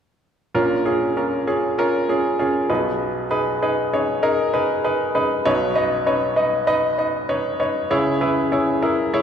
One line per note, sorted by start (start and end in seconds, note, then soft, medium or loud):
0.54 2.65 A#1 medium
0.54 2.65 A#2 medium
0.54 0.83 C#4 medium
0.54 0.83 F4 medium
0.54 0.83 A#4 medium
0.85 1.14 C#4 medium
0.85 1.14 F4 medium
0.85 1.13 G#4 medium
1.17 1.44 C#4 medium
1.17 1.44 F4 medium
1.17 1.45 A#4 medium
1.47 1.75 C#4 medium
1.47 1.75 F4 soft
1.47 1.75 G#4 medium
1.78 2.06 C#4 medium
1.78 2.06 F4 medium
1.78 2.06 A#4 medium
2.09 2.37 C#4 medium
2.09 2.37 F4 medium
2.09 2.37 G#4 medium
2.39 2.67 C#4 medium
2.39 2.67 F4 medium
2.39 2.67 G#4 medium
2.69 5.11 B1 medium
2.69 5.11 B2 medium
2.69 3.25 D#4 medium
2.69 3.25 G#4 medium
2.69 3.25 B4 medium
3.31 3.59 D#4 medium
3.31 3.59 G#4 medium
3.31 3.59 B4 medium
3.62 3.90 D#4 medium
3.62 3.90 G#4 medium
3.62 3.90 B4 medium
3.93 4.21 D#4 medium
3.93 4.21 G#4 medium
3.93 4.21 C#5 medium
4.23 4.51 D#4 medium
4.23 4.51 G#4 medium
4.23 4.51 A#4 medium
4.53 4.81 D#4 medium
4.53 4.81 G#4 medium
4.53 4.81 B4 medium
4.84 5.12 D#4 medium
4.84 5.12 G#4 medium
4.84 5.12 B4 medium
5.15 5.43 D#4 medium
5.15 5.43 G#4 medium
5.15 5.43 B4 medium
5.45 7.87 B1 medium
5.45 7.86 B2 medium
5.45 5.73 D#4 medium
5.45 5.73 B4 medium
5.45 5.73 C#5 medium
5.75 6.04 D#4 medium
5.75 6.04 B4 medium
5.75 6.04 D#5 medium
6.06 6.34 D#4 medium
6.06 6.35 B4 medium
6.06 6.35 C#5 medium
6.36 6.65 D#4 medium
6.36 6.65 B4 medium
6.36 6.65 D#5 medium
6.67 6.95 D#4 medium
6.67 6.96 B4 medium
6.67 6.95 D#5 medium
6.98 7.26 D#4 medium
6.98 7.26 B4 medium
6.98 7.27 D#5 medium
7.29 7.57 D#4 medium
7.29 7.57 B4 medium
7.29 7.57 C#5 medium
7.60 7.88 D#4 medium
7.60 7.88 B4 medium
7.60 7.88 C#5 medium
7.91 9.22 C#2 medium
7.91 9.22 C#3 medium
7.91 8.18 E4 medium
7.91 8.18 G#4 medium
7.91 8.19 C#5 medium
8.21 8.49 E4 medium
8.21 8.49 G#4 medium
8.21 8.49 B4 medium
8.52 8.80 E4 medium
8.52 8.80 G#4 medium
8.52 8.80 C#5 medium
8.82 9.10 E4 medium
8.82 9.10 G#4 medium
8.82 9.10 A#4 medium
9.14 9.22 E4 medium
9.14 9.22 G#4 medium
9.14 9.22 C#5 medium